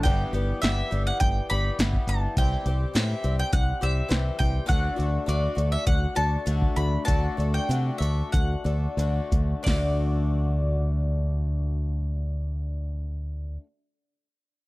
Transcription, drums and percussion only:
0, 0, Header, 1, 2, 480
1, 0, Start_track
1, 0, Tempo, 581395
1, 28, Time_signature, 4, 2, 24, 8
1, 4348, Tempo, 604230
1, 6268, Tempo, 656455
1, 7708, Tempo, 689655
1, 11203, End_track
2, 0, Start_track
2, 0, Title_t, "Drums"
2, 41, Note_on_c, 9, 42, 76
2, 42, Note_on_c, 9, 36, 95
2, 124, Note_off_c, 9, 42, 0
2, 125, Note_off_c, 9, 36, 0
2, 284, Note_on_c, 9, 42, 54
2, 367, Note_off_c, 9, 42, 0
2, 520, Note_on_c, 9, 42, 73
2, 528, Note_on_c, 9, 38, 101
2, 603, Note_off_c, 9, 42, 0
2, 611, Note_off_c, 9, 38, 0
2, 762, Note_on_c, 9, 42, 58
2, 845, Note_off_c, 9, 42, 0
2, 997, Note_on_c, 9, 42, 84
2, 998, Note_on_c, 9, 36, 102
2, 1079, Note_off_c, 9, 42, 0
2, 1081, Note_off_c, 9, 36, 0
2, 1239, Note_on_c, 9, 42, 56
2, 1321, Note_off_c, 9, 42, 0
2, 1477, Note_on_c, 9, 42, 78
2, 1485, Note_on_c, 9, 38, 95
2, 1560, Note_off_c, 9, 42, 0
2, 1568, Note_off_c, 9, 38, 0
2, 1595, Note_on_c, 9, 36, 64
2, 1678, Note_off_c, 9, 36, 0
2, 1715, Note_on_c, 9, 42, 56
2, 1798, Note_off_c, 9, 42, 0
2, 1955, Note_on_c, 9, 36, 102
2, 1956, Note_on_c, 9, 42, 77
2, 2037, Note_off_c, 9, 36, 0
2, 2039, Note_off_c, 9, 42, 0
2, 2194, Note_on_c, 9, 42, 60
2, 2277, Note_off_c, 9, 42, 0
2, 2437, Note_on_c, 9, 42, 73
2, 2445, Note_on_c, 9, 38, 105
2, 2519, Note_off_c, 9, 42, 0
2, 2528, Note_off_c, 9, 38, 0
2, 2675, Note_on_c, 9, 42, 56
2, 2757, Note_off_c, 9, 42, 0
2, 2911, Note_on_c, 9, 42, 76
2, 2914, Note_on_c, 9, 36, 105
2, 2993, Note_off_c, 9, 42, 0
2, 2997, Note_off_c, 9, 36, 0
2, 3155, Note_on_c, 9, 42, 51
2, 3237, Note_off_c, 9, 42, 0
2, 3388, Note_on_c, 9, 42, 68
2, 3396, Note_on_c, 9, 38, 93
2, 3470, Note_off_c, 9, 42, 0
2, 3479, Note_off_c, 9, 38, 0
2, 3633, Note_on_c, 9, 36, 73
2, 3635, Note_on_c, 9, 42, 48
2, 3716, Note_off_c, 9, 36, 0
2, 3717, Note_off_c, 9, 42, 0
2, 3876, Note_on_c, 9, 36, 98
2, 3878, Note_on_c, 9, 42, 66
2, 3958, Note_off_c, 9, 36, 0
2, 3961, Note_off_c, 9, 42, 0
2, 4126, Note_on_c, 9, 42, 52
2, 4209, Note_off_c, 9, 42, 0
2, 4365, Note_on_c, 9, 42, 73
2, 4444, Note_off_c, 9, 42, 0
2, 4599, Note_on_c, 9, 42, 54
2, 4678, Note_off_c, 9, 42, 0
2, 4825, Note_on_c, 9, 42, 76
2, 4826, Note_on_c, 9, 36, 99
2, 4904, Note_off_c, 9, 42, 0
2, 4905, Note_off_c, 9, 36, 0
2, 5065, Note_on_c, 9, 42, 53
2, 5144, Note_off_c, 9, 42, 0
2, 5303, Note_on_c, 9, 42, 78
2, 5382, Note_off_c, 9, 42, 0
2, 5422, Note_on_c, 9, 36, 65
2, 5501, Note_off_c, 9, 36, 0
2, 5546, Note_on_c, 9, 42, 54
2, 5625, Note_off_c, 9, 42, 0
2, 5788, Note_on_c, 9, 36, 96
2, 5790, Note_on_c, 9, 42, 80
2, 5867, Note_off_c, 9, 36, 0
2, 5869, Note_off_c, 9, 42, 0
2, 6043, Note_on_c, 9, 42, 61
2, 6122, Note_off_c, 9, 42, 0
2, 6287, Note_on_c, 9, 42, 80
2, 6360, Note_off_c, 9, 42, 0
2, 6516, Note_on_c, 9, 42, 55
2, 6589, Note_off_c, 9, 42, 0
2, 6746, Note_on_c, 9, 36, 95
2, 6747, Note_on_c, 9, 42, 73
2, 6819, Note_off_c, 9, 36, 0
2, 6820, Note_off_c, 9, 42, 0
2, 6983, Note_on_c, 9, 42, 50
2, 7056, Note_off_c, 9, 42, 0
2, 7223, Note_on_c, 9, 42, 67
2, 7296, Note_off_c, 9, 42, 0
2, 7466, Note_on_c, 9, 36, 67
2, 7467, Note_on_c, 9, 42, 49
2, 7539, Note_off_c, 9, 36, 0
2, 7540, Note_off_c, 9, 42, 0
2, 7716, Note_on_c, 9, 36, 83
2, 7716, Note_on_c, 9, 49, 75
2, 7723, Note_on_c, 9, 38, 87
2, 7785, Note_off_c, 9, 36, 0
2, 7786, Note_off_c, 9, 49, 0
2, 7793, Note_off_c, 9, 38, 0
2, 11203, End_track
0, 0, End_of_file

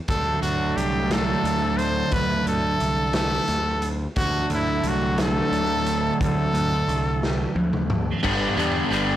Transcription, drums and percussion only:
0, 0, Header, 1, 2, 480
1, 0, Start_track
1, 0, Tempo, 679502
1, 63, Time_signature, 6, 3, 24, 8
1, 6473, End_track
2, 0, Start_track
2, 0, Title_t, "Drums"
2, 57, Note_on_c, 9, 42, 81
2, 62, Note_on_c, 9, 36, 108
2, 128, Note_off_c, 9, 42, 0
2, 132, Note_off_c, 9, 36, 0
2, 302, Note_on_c, 9, 42, 66
2, 373, Note_off_c, 9, 42, 0
2, 548, Note_on_c, 9, 42, 64
2, 619, Note_off_c, 9, 42, 0
2, 782, Note_on_c, 9, 42, 85
2, 787, Note_on_c, 9, 38, 109
2, 853, Note_off_c, 9, 42, 0
2, 857, Note_off_c, 9, 38, 0
2, 1025, Note_on_c, 9, 42, 66
2, 1096, Note_off_c, 9, 42, 0
2, 1262, Note_on_c, 9, 42, 64
2, 1332, Note_off_c, 9, 42, 0
2, 1494, Note_on_c, 9, 42, 79
2, 1501, Note_on_c, 9, 36, 106
2, 1564, Note_off_c, 9, 42, 0
2, 1571, Note_off_c, 9, 36, 0
2, 1743, Note_on_c, 9, 42, 61
2, 1813, Note_off_c, 9, 42, 0
2, 1979, Note_on_c, 9, 42, 56
2, 2050, Note_off_c, 9, 42, 0
2, 2212, Note_on_c, 9, 42, 74
2, 2217, Note_on_c, 9, 38, 109
2, 2283, Note_off_c, 9, 42, 0
2, 2288, Note_off_c, 9, 38, 0
2, 2456, Note_on_c, 9, 42, 61
2, 2527, Note_off_c, 9, 42, 0
2, 2698, Note_on_c, 9, 42, 57
2, 2768, Note_off_c, 9, 42, 0
2, 2939, Note_on_c, 9, 42, 85
2, 2944, Note_on_c, 9, 36, 104
2, 3009, Note_off_c, 9, 42, 0
2, 3014, Note_off_c, 9, 36, 0
2, 3178, Note_on_c, 9, 42, 54
2, 3248, Note_off_c, 9, 42, 0
2, 3416, Note_on_c, 9, 42, 61
2, 3486, Note_off_c, 9, 42, 0
2, 3658, Note_on_c, 9, 42, 81
2, 3663, Note_on_c, 9, 38, 106
2, 3728, Note_off_c, 9, 42, 0
2, 3733, Note_off_c, 9, 38, 0
2, 3904, Note_on_c, 9, 42, 66
2, 3975, Note_off_c, 9, 42, 0
2, 4143, Note_on_c, 9, 42, 64
2, 4213, Note_off_c, 9, 42, 0
2, 4386, Note_on_c, 9, 36, 113
2, 4386, Note_on_c, 9, 42, 89
2, 4456, Note_off_c, 9, 36, 0
2, 4456, Note_off_c, 9, 42, 0
2, 4625, Note_on_c, 9, 42, 63
2, 4695, Note_off_c, 9, 42, 0
2, 4868, Note_on_c, 9, 42, 63
2, 4939, Note_off_c, 9, 42, 0
2, 5109, Note_on_c, 9, 38, 62
2, 5179, Note_off_c, 9, 38, 0
2, 5339, Note_on_c, 9, 48, 73
2, 5410, Note_off_c, 9, 48, 0
2, 5461, Note_on_c, 9, 47, 67
2, 5532, Note_off_c, 9, 47, 0
2, 5580, Note_on_c, 9, 45, 91
2, 5650, Note_off_c, 9, 45, 0
2, 5823, Note_on_c, 9, 49, 106
2, 5825, Note_on_c, 9, 36, 106
2, 5894, Note_off_c, 9, 49, 0
2, 5895, Note_off_c, 9, 36, 0
2, 6071, Note_on_c, 9, 42, 64
2, 6142, Note_off_c, 9, 42, 0
2, 6308, Note_on_c, 9, 42, 66
2, 6379, Note_off_c, 9, 42, 0
2, 6473, End_track
0, 0, End_of_file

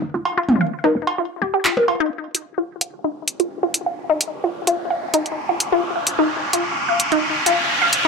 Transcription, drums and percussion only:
0, 0, Header, 1, 3, 480
1, 0, Start_track
1, 0, Tempo, 465116
1, 262, Time_signature, 4, 2, 24, 8
1, 8335, End_track
2, 0, Start_track
2, 0, Title_t, "Percussion blips"
2, 867, Note_on_c, 9, 61, 46
2, 970, Note_off_c, 9, 61, 0
2, 1827, Note_on_c, 9, 61, 72
2, 1930, Note_off_c, 9, 61, 0
2, 8335, End_track
3, 0, Start_track
3, 0, Title_t, "Drums"
3, 262, Note_on_c, 9, 56, 65
3, 365, Note_off_c, 9, 56, 0
3, 502, Note_on_c, 9, 47, 78
3, 605, Note_off_c, 9, 47, 0
3, 1107, Note_on_c, 9, 56, 63
3, 1210, Note_off_c, 9, 56, 0
3, 1701, Note_on_c, 9, 39, 99
3, 1805, Note_off_c, 9, 39, 0
3, 1941, Note_on_c, 9, 56, 65
3, 2044, Note_off_c, 9, 56, 0
3, 2421, Note_on_c, 9, 42, 86
3, 2524, Note_off_c, 9, 42, 0
3, 2901, Note_on_c, 9, 42, 88
3, 3004, Note_off_c, 9, 42, 0
3, 3381, Note_on_c, 9, 42, 90
3, 3484, Note_off_c, 9, 42, 0
3, 3506, Note_on_c, 9, 42, 34
3, 3610, Note_off_c, 9, 42, 0
3, 3861, Note_on_c, 9, 42, 87
3, 3964, Note_off_c, 9, 42, 0
3, 4341, Note_on_c, 9, 42, 95
3, 4445, Note_off_c, 9, 42, 0
3, 4822, Note_on_c, 9, 42, 92
3, 4925, Note_off_c, 9, 42, 0
3, 5302, Note_on_c, 9, 42, 96
3, 5405, Note_off_c, 9, 42, 0
3, 5427, Note_on_c, 9, 42, 37
3, 5530, Note_off_c, 9, 42, 0
3, 5781, Note_on_c, 9, 42, 91
3, 5885, Note_off_c, 9, 42, 0
3, 6261, Note_on_c, 9, 42, 94
3, 6365, Note_off_c, 9, 42, 0
3, 6741, Note_on_c, 9, 42, 96
3, 6845, Note_off_c, 9, 42, 0
3, 7221, Note_on_c, 9, 42, 99
3, 7324, Note_off_c, 9, 42, 0
3, 7346, Note_on_c, 9, 42, 37
3, 7449, Note_off_c, 9, 42, 0
3, 7701, Note_on_c, 9, 42, 92
3, 7804, Note_off_c, 9, 42, 0
3, 8181, Note_on_c, 9, 42, 94
3, 8284, Note_off_c, 9, 42, 0
3, 8335, End_track
0, 0, End_of_file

